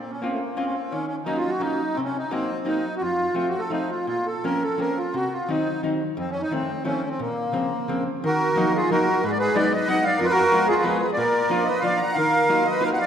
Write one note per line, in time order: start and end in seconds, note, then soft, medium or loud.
0.00 0.13 A#2 soft
0.00 0.11 C4 medium
0.10 0.22 C#4 soft
0.21 0.29 A#3 medium
0.21 0.41 A#3 medium
0.21 0.41 C4 soft
0.21 0.41 C#4 soft
0.21 0.41 F4 soft
0.32 0.39 A3 soft
0.39 0.57 A#3 soft
0.57 0.76 A#3 soft
0.57 0.65 C4 medium
0.57 0.76 C4 soft
0.57 0.75 C#4 soft
0.57 0.76 F4 medium
0.66 0.73 C#4 soft
0.72 0.93 C4 medium
0.90 1.19 D#3 medium
0.90 1.06 C#4 medium
1.08 1.16 C#4 medium
1.25 1.45 F#3 medium
1.25 1.46 A#3 soft
1.25 1.45 C#4 soft
1.25 1.38 D#4 medium
1.25 1.46 D#4 soft
1.37 1.51 F4 medium
1.48 1.62 F#4 medium
1.60 1.80 F#3 medium
1.60 1.80 A#3 soft
1.60 1.80 C#4 soft
1.60 1.97 D#4 medium
1.60 1.80 D#4 soft
1.95 2.23 C3 medium
1.95 2.00 C4 medium
2.04 2.17 C#4 medium
2.18 2.31 D#4 medium
2.31 2.50 F#3 medium
2.31 2.50 A#3 soft
2.31 2.68 C4 medium
2.31 2.50 C4 medium
2.31 2.50 D#4 medium
2.65 2.84 F#3 soft
2.65 2.84 A#3 soft
2.65 2.84 C4 soft
2.65 2.95 D#4 medium
2.65 2.84 D#4 soft
2.97 3.03 F#4 medium
3.01 3.28 F2 soft
3.01 3.35 F4 medium
3.34 3.54 F3 soft
3.34 3.54 A3 soft
3.34 3.54 C4 soft
3.34 3.54 F4 soft
3.34 3.49 F4 medium
3.49 3.61 F#4 medium
3.59 3.72 A4 medium
3.70 3.90 F3 soft
3.70 3.90 A3 soft
3.70 3.90 C4 soft
3.70 3.91 D#4 medium
3.70 3.90 F4 soft
3.90 4.06 F4 medium
4.07 4.35 A#2 medium
4.07 4.27 F4 medium
4.26 4.44 A4 medium
4.44 4.63 F3 medium
4.44 4.62 A#3 soft
4.44 4.62 C4 soft
4.44 4.63 C#4 medium
4.44 4.63 A#4 medium
4.63 4.80 A4 medium
4.78 4.97 F3 soft
4.78 4.97 A#3 soft
4.78 4.97 C4 soft
4.78 4.97 C#4 soft
4.78 4.99 A#4 medium
4.98 5.15 F4 medium
5.14 5.40 C3 medium
5.14 5.33 F#4 medium
5.32 5.50 F4 medium
5.49 5.67 D#3 medium
5.49 5.67 F#3 soft
5.49 5.67 C4 soft
5.49 5.82 D#4 medium
5.49 5.67 D#4 medium
5.83 6.01 D#3 soft
5.83 6.01 F#3 soft
5.83 6.01 C4 soft
5.83 6.01 D#4 soft
6.17 6.43 F2 medium
6.17 6.30 C4 medium
6.31 6.42 C#4 medium
6.42 6.53 D#4 medium
6.51 6.69 D#3 soft
6.51 6.69 F3 soft
6.51 6.69 A3 soft
6.51 6.69 C4 medium
6.51 6.84 C4 medium
6.85 7.03 D#3 soft
6.85 7.03 F3 soft
6.85 7.03 A3 soft
6.85 7.03 C4 soft
6.85 7.09 C#4 medium
7.09 7.20 C4 medium
7.19 7.45 A#2 medium
7.19 8.04 A#3 medium
7.52 7.71 C#3 medium
7.52 7.71 F3 soft
7.52 7.72 A#3 soft
7.52 7.71 C4 medium
7.88 8.07 C#3 medium
7.88 8.07 F3 soft
7.88 8.07 A#3 soft
7.88 8.07 C4 medium
8.24 8.49 D#3 medium
8.24 8.72 F#4 medium
8.24 8.77 A#4 medium
8.56 8.74 F3 medium
8.56 8.74 F#3 medium
8.56 8.74 A#3 medium
8.56 8.74 D#4 medium
8.76 8.90 F4 medium
8.76 8.90 G#4 medium
8.90 9.08 F3 soft
8.90 9.08 F#3 soft
8.90 9.08 A#3 soft
8.90 9.08 D#4 medium
8.90 9.22 F#4 medium
8.90 9.24 A#4 medium
9.23 9.48 G#2 medium
9.23 9.32 G#4 medium
9.23 9.31 B4 medium
9.32 9.38 D5 medium
9.39 9.56 G#4 medium
9.39 9.57 B4 loud
9.55 9.72 F#3 medium
9.55 9.72 G#3 medium
9.55 9.73 B3 medium
9.55 9.72 D#4 medium
9.55 9.73 B4 medium
9.55 9.73 D5 medium
9.71 9.88 D#5 medium
9.75 9.88 B4 medium
9.87 10.05 F#3 medium
9.87 10.04 G#3 soft
9.87 10.05 B3 medium
9.87 10.05 D#4 medium
9.87 10.04 D#5 medium
9.87 10.05 F#5 loud
10.03 10.20 D5 medium
10.03 10.20 F5 medium
10.17 10.44 F2 medium
10.17 10.27 F4 medium
10.17 10.26 A#4 medium
10.25 10.33 B4 medium
10.30 10.66 F#4 medium
10.30 10.68 A#4 loud
10.52 10.69 F3 medium
10.52 10.69 G#3 medium
10.52 10.69 B3 medium
10.52 10.69 F4 medium
10.68 10.84 F4 medium
10.68 10.84 G#4 medium
10.82 11.01 F3 medium
10.82 11.01 G#3 medium
10.82 11.01 B3 medium
10.82 11.01 F4 medium
10.82 10.98 B4 medium
10.86 11.01 G#4 medium
11.00 11.07 B4 medium
11.04 11.11 G#4 medium
11.13 11.42 A#2 medium
11.13 11.67 D5 loud
11.18 11.64 A#4 medium
11.49 11.67 F3 medium
11.49 11.67 A#3 medium
11.49 11.67 D4 soft
11.49 11.67 F4 medium
11.64 11.81 D#5 medium
11.69 11.83 B4 medium
11.80 12.01 F3 medium
11.80 12.01 A#3 soft
11.80 12.00 F5 loud
11.84 12.01 D4 soft
11.84 12.01 F4 medium
11.84 12.00 D5 medium
11.97 12.15 A#5 medium
12.02 12.16 F#5 medium
12.14 12.41 D#3 medium
12.14 12.67 F5 loud
12.19 12.64 A#4 medium
12.49 12.66 F#3 medium
12.49 12.66 A#3 medium
12.49 12.67 D#4 medium
12.49 12.66 F4 medium
12.65 12.82 D#5 medium
12.71 12.84 B4 medium
12.81 12.98 F#3 medium
12.81 12.99 A#3 soft
12.81 12.98 D#4 soft
12.81 12.99 F4 medium
12.81 12.89 F5 medium
12.86 12.91 A#4 medium
12.93 13.07 F5 medium
12.93 12.98 F#5 medium
13.01 13.07 D5 medium